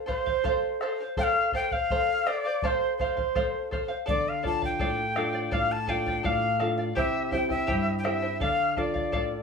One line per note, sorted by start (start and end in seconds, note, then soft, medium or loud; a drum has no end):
0.06 0.25 A4 medium
0.06 0.26 C5 medium
0.06 0.77 C5 medium
0.06 0.25 F5 medium
0.06 bombo low medium
0.26 0.43 C5 soft
0.26 0.44 F5 medium
0.26 bombo low soft
0.44 0.80 A4 medium
0.44 0.81 C5 medium
0.44 0.81 F5 medium
0.44 bombo low medium
0.81 0.99 A4 medium
0.81 1.00 C5 medium
0.81 0.99 F5 medium
0.81 bombo rim medium
1.00 1.16 C5 soft
1.00 1.17 F5 medium
1.17 1.52 A4 medium
1.17 1.53 C5 medium
1.17 1.53 F5 medium
1.17 1.24 G5 loud
1.17 bombo low medium
1.23 1.52 F5 loud
1.52 1.72 A4 medium
1.52 1.72 C5 medium
1.52 1.71 F5 medium
1.52 1.74 G5 loud
1.52 bombo low soft
1.71 1.90 C5 soft
1.71 1.90 F5 medium
1.71 2.29 F5 medium
1.71 bombo low medium
1.90 2.25 A4 medium
1.90 2.26 C5 medium
1.90 2.27 F5 medium
1.90 bombo low medium
2.26 2.45 A4 medium
2.26 2.44 C5 medium
2.26 2.63 D5 medium
2.26 2.44 F5 medium
2.26 bombo rim medium
2.45 2.62 C5 soft
2.45 2.63 F5 medium
2.62 2.98 A4 medium
2.62 3.00 C5 medium
2.62 2.68 D5 medium
2.62 3.00 F5 medium
2.62 bombo low medium
2.67 2.97 C5 medium
2.98 3.17 A4 medium
2.98 3.67 C5 medium
2.98 3.16 C5 medium
2.98 3.16 F5 medium
2.98 bombo low medium
3.17 3.35 C5 soft
3.17 3.35 F5 medium
3.17 bombo low medium
3.35 3.70 A4 medium
3.35 3.71 C5 medium
3.35 3.72 F5 medium
3.35 bombo low medium
3.71 3.90 A4 medium
3.71 3.88 C5 medium
3.71 3.87 F5 medium
3.71 bombo low medium
3.88 4.08 C5 soft
3.88 4.06 F5 medium
4.06 4.79 D3 medium
4.06 4.42 A4 medium
4.06 4.42 D5 medium
4.06 4.30 D5 loud
4.06 4.43 F5 medium
4.06 bombo low medium
4.29 4.46 F5 medium
4.43 5.02 D4 soft
4.43 5.03 F4 soft
4.43 4.62 A4 medium
4.43 5.03 A4 medium
4.43 4.62 D5 medium
4.43 4.60 F5 medium
4.43 4.62 A5 loud
4.43 bombo low medium
4.62 4.79 D5 soft
4.62 4.80 F5 medium
4.62 5.55 G5 loud
4.62 bombo low medium
4.79 5.51 A2 medium
4.79 5.14 A4 medium
4.79 5.15 D5 medium
4.79 5.16 F5 medium
4.79 bombo low medium
5.16 5.75 D4 soft
5.16 5.75 F4 soft
5.16 5.34 A4 medium
5.16 5.75 A4 medium
5.16 5.33 D5 medium
5.16 5.32 F5 medium
5.16 bombo rim medium
5.33 5.51 D5 soft
5.33 5.51 F5 medium
5.51 6.22 A2 medium
5.51 5.86 A4 medium
5.51 5.87 D5 medium
5.51 5.87 F5 medium
5.51 5.73 F5 loud
5.51 bombo low medium
5.72 5.91 A5 loud
5.87 6.47 D4 medium
5.87 6.47 F4 soft
5.87 6.06 A4 medium
5.87 6.48 A4 medium
5.87 6.06 D5 medium
5.87 6.05 F5 medium
5.87 6.28 G5 medium
5.87 bombo low soft
6.06 6.23 D5 soft
6.06 6.24 F5 medium
6.06 bombo low soft
6.23 6.95 A2 medium
6.23 6.58 A4 medium
6.23 6.59 D5 medium
6.23 6.59 F5 medium
6.23 6.80 F5 loud
6.23 bombo low medium
6.59 6.90 D4 medium
6.59 6.90 F4 soft
6.59 6.78 A4 medium
6.59 6.91 A4 medium
6.59 6.77 D5 medium
6.59 6.76 F5 medium
6.59 bombo rim medium
6.78 6.96 D5 soft
6.78 6.95 F5 medium
6.95 7.67 C3 medium
6.95 7.31 E4 medium
6.95 7.32 G4 medium
6.95 7.31 C5 medium
6.95 7.30 E5 medium
6.95 7.31 E5 loud
6.95 7.32 G5 medium
6.95 bombo low medium
7.31 7.91 C4 soft
7.31 7.49 E4 medium
7.31 7.92 E4 soft
7.31 7.91 G4 medium
7.31 7.49 C5 medium
7.31 7.50 E5 medium
7.31 7.48 G5 medium
7.31 7.50 G5 medium
7.31 bombo low medium
7.49 7.66 E4 medium
7.49 7.66 C5 soft
7.49 7.95 E5 medium
7.49 7.67 G5 soft
7.49 bombo low medium
7.67 8.40 G2 medium
7.67 8.03 E4 medium
7.67 8.04 G4 medium
7.67 8.03 C5 medium
7.67 8.02 E5 medium
7.67 8.04 G5 medium
7.67 bombo low medium
7.98 8.07 G5 medium
8.04 8.35 C4 soft
8.04 8.22 E4 medium
8.04 8.35 E4 soft
8.04 8.35 G4 medium
8.04 8.21 C5 medium
8.04 8.23 E5 medium
8.04 8.42 E5 medium
8.04 8.21 G5 medium
8.04 bombo rim medium
8.22 8.40 E4 soft
8.22 8.41 C5 soft
8.22 8.41 G5 medium
8.40 9.12 D3 medium
8.40 8.75 A4 medium
8.40 8.76 D5 medium
8.40 8.77 F5 medium
8.40 8.79 F5 loud
8.40 bombo low medium
8.76 9.35 D4 soft
8.76 9.35 F4 soft
8.76 8.95 A4 medium
8.76 9.36 A4 medium
8.76 8.94 D5 medium
8.76 9.43 D5 medium
8.76 8.93 F5 medium
8.76 bombo low medium
8.94 9.12 D5 soft
8.94 9.12 F5 medium
8.94 bombo low medium
9.12 9.43 A2 medium
9.12 9.43 A4 medium
9.12 9.43 D5 medium
9.12 9.43 F5 medium
9.12 bombo low medium